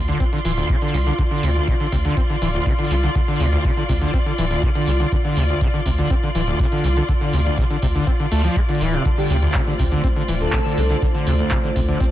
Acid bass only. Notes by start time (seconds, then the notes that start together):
0.08 D3
0.20 C4
0.33 D3
0.45 E3
0.57 D2
0.69 D3
0.82 D3
0.94 C3
1.06 D3
1.19 D3
1.31 D3
1.43 C3
1.56 D2
1.68 D3
1.80 D3
1.92 C3
2.05 D3
2.17 C4
2.30 D3
2.42 E3
2.54 D2
2.66 D3
2.79 D3
2.91 C3
3.03 D3
3.15 D3
3.28 D3
3.40 C3
3.52 D2
3.64 D3
3.77 D3
3.89 C3
4.02 D3
4.14 C4
4.26 D3
4.38 E3
4.51 D2
4.63 D3
4.75 D3
4.88 C3
5.00 D3
5.12 D3
5.25 D3
5.37 C3
5.49 D2
5.61 D3
5.74 D3
5.86 C3
5.98 D3
6.10 C4
6.23 D3
6.35 E3
6.47 D2
6.60 D3
6.72 D3
6.84 C3
6.97 D3
7.09 D3
7.21 D3
7.33 C3
7.46 D2
7.58 D3
7.70 D3
7.82 C3
7.95 D3
8.07 C4
8.20 D3
8.32 A3
8.44 F3
8.56 A3
8.69 D3
8.81 E3
8.93 C3
9.05 D3
9.18 D3
9.30 C3
9.43 D2
9.55 D3
9.67 D3
9.79 C3
9.92 D3
10.04 C4
10.16 D3
10.28 E3
10.41 D2
10.53 D3
10.65 D3
10.78 C3
10.90 D3
11.02 D3
11.15 D3
11.27 C3
11.39 D2
11.51 D3
11.64 D3
11.76 C3
11.88 D3
12.00 C4